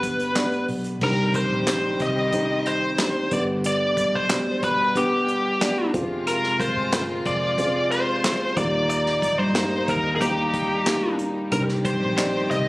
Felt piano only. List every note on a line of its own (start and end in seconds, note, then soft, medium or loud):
0.00 1.03 G2 medium
0.00 1.03 D3 medium
0.00 0.36 B3 medium
0.00 0.36 D4 medium
0.00 0.36 G4 medium
0.00 1.03 B4 medium
0.00 0.36 D5 medium
0.36 0.83 B3 medium
0.36 0.83 D4 medium
0.36 0.84 G4 medium
0.36 0.84 D5 medium
1.02 1.97 G2 medium
1.02 1.49 D4 medium
1.02 1.49 D#4 medium
1.02 1.50 G4 medium
1.02 1.50 C5 medium
1.67 2.15 D4 medium
1.67 2.15 D#4 medium
1.67 2.15 G4 medium
1.67 2.15 C5 medium
2.33 2.81 C4 medium
2.33 2.81 D#4 medium
2.33 2.81 G4 medium
2.33 2.81 C5 medium
2.99 3.29 D4 medium
2.99 3.31 D#4 medium
2.99 3.30 G4 medium
2.99 3.32 C5 medium
3.31 4.26 G2 medium
3.31 4.26 D3 medium
3.31 4.10 B3 medium
3.31 4.10 D4 medium
3.31 4.10 G4 medium
3.31 4.10 B4 medium
4.29 4.77 B2 medium
4.29 4.77 D4 medium
4.29 4.77 G4 medium
4.29 4.77 D5 medium
4.95 5.43 B3 medium
4.95 5.43 D4 medium
4.95 5.43 G4 medium
4.95 5.43 B4 medium
5.61 5.94 B3 medium
5.61 5.94 D4 medium
5.61 5.94 G4 medium
5.61 5.94 D5 medium
5.93 6.88 C3 medium
5.93 6.72 C4 medium
5.93 6.72 F4 medium
5.93 6.73 G#4 medium
5.93 6.73 C5 medium
6.92 7.40 C4 medium
6.92 7.40 F4 medium
6.92 7.40 G#4 medium
6.92 7.40 A#4 medium
7.58 8.05 C4 medium
7.58 8.06 F4 medium
7.58 8.05 G#4 medium
7.58 8.06 C5 medium
8.24 8.56 C4 medium
8.24 8.57 F4 medium
8.24 8.57 G#4 medium
8.24 8.57 C5 medium
8.57 9.51 A#2 medium
8.57 9.35 A#3 medium
8.57 9.35 D#4 medium
8.57 9.35 G4 medium
8.57 9.35 A#4 medium
9.55 10.02 A#3 medium
9.55 10.02 D#4 medium
9.55 10.02 G4 medium
9.55 10.03 A#4 medium
10.21 10.68 A#3 medium
10.21 10.68 D#4 medium
10.21 10.68 G4 medium
10.21 10.68 C5 medium
10.87 11.34 A#3 medium
10.87 11.34 D#4 medium
10.87 11.34 G4 medium
10.87 11.34 A#4 medium
11.52 12.47 G2 medium
11.52 12.00 D4 medium
11.52 12.00 D#4 medium
11.52 12.00 G4 medium
11.52 12.00 C5 medium
12.17 12.65 D#4 medium
12.17 12.65 G4 medium
12.17 12.65 D5 medium
12.17 12.66 D#5 medium